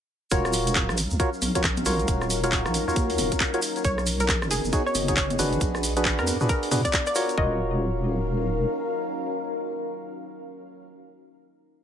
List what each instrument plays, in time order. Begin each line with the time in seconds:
0.31 wobble bass D#1, string machine F#3 C#4 A#4 F5, ambient pad D#4, synth stab F4 F#4 A#4 C#5, kick, closed hi-hat, shaker
0.45 cross-stick, shaker
0.53 open hi-hat, shaker
0.67 closed hi-hat, shaker
0.75 ambient pad A#4, kick, clap, shaker
0.89 wobble bass A#1, cross-stick, shaker
0.97 open hi-hat, shaker
1.10 wobble bass D#2, shaker
1.20 synth stab F4 F#4 A#4 C#5, kick, closed hi-hat, shaker
1.34 shaker
1.42 wobble bass A#1, open hi-hat, high conga, shaker
1.55 synth stab F4 F#4 A#4 C#5, kick, closed hi-hat, shaker
1.63 kick, clap, shaker
1.77 closed hi-hat, high conga, shaker
1.86 wobble bass A#1, synth stab F4 F#4 A#4 C#5, open hi-hat, shaker
1.99 closed hi-hat, shaker
2.08 wobble bass D#1, kick, closed hi-hat, shaker
2.21 cross-stick, shaker
2.30 open hi-hat, shaker
2.44 synth stab F4 F#4 A#4 C#5, closed hi-hat, shaker
2.52 kick, clap, shaker
2.66 wobble bass A#1, cross-stick, shaker
2.74 open hi-hat, shaker
2.88 wobble bass D#2, synth stab F4 F#4 A#4 C#5, shaker
2.96 kick, closed hi-hat, shaker
3.10 open hi-hat, shaker
3.18 wobble bass D#1, open hi-hat, high conga, shaker
3.32 kick, closed hi-hat, shaker
3.40 kick, clap, shaker
3.54 synth stab F4 F#4 A#4 C#5, closed hi-hat, shaker
3.62 open hi-hat, shaker
3.76 closed hi-hat, shaker
3.84 wobble bass B1, ambient pad B3, string machine C#4 D#4 F#4 G#4, synth pluck C#5, kick, closed hi-hat, shaker
3.98 cross-stick, shaker
4.06 ambient pad F#4, open hi-hat, shaker
4.20 synth pluck A#4, closed hi-hat, shaker
4.29 kick, clap, shaker
4.42 wobble bass F#1, cross-stick, shaker
4.51 synth pluck G#4, open hi-hat, shaker
4.64 wobble bass F#1, shaker
4.73 synth stab D#4 F#4 G#4 C#5, kick, closed hi-hat, shaker
4.86 synth pluck C#5, shaker
4.95 wobble bass F#1, open hi-hat, high conga, shaker
5.08 synth stab D#4 F#4 G#4 C#5, kick, closed hi-hat, shaker
5.17 synth pluck C#5, kick, clap, shaker
5.30 closed hi-hat, high conga, shaker
5.39 wobble bass F#1, synth stab D4 F#4 G#4 B4, open hi-hat, shaker
5.53 closed hi-hat, shaker
5.61 wobble bass A#1, string machine B3 D4, kick, closed hi-hat, shaker
5.75 cross-stick, shaker
5.80 ambient pad F5, open hi-hat, shaker
5.85 ambient pad D6
5.97 synth stab D4 F#4 G#4 B4, closed hi-hat, shaker
6.05 kick, clap, shaker
6.19 wobble bass F2, synth pluck A#4, cross-stick, shaker
6.27 open hi-hat, high conga, shaker
6.40 wobble bass A#2, synth stab D4 F#4 G#4 B4, shaker
6.49 synth pluck A#4, kick, closed hi-hat, shaker
6.63 open hi-hat, shaker
6.71 wobble bass A#2, synth stab D4 F#4 G#4 B4, open hi-hat, high conga, shaker
6.85 synth pluck D5, kick, closed hi-hat, shaker
6.93 kick, clap, shaker
7.06 synth pluck D5, cross-stick, closed hi-hat, shaker
7.15 synth stab F4 F#4 A#4 C#5, open hi-hat, shaker
7.29 closed hi-hat, shaker
7.38 wobble bass D#1, string machine F#3 C#4 A#4 F5, ambient pad D#4, synth stab F4 F#4 A#4 C#5, synth pluck D#5, kick
7.46 ambient pad A#4
7.53 ambient pad F5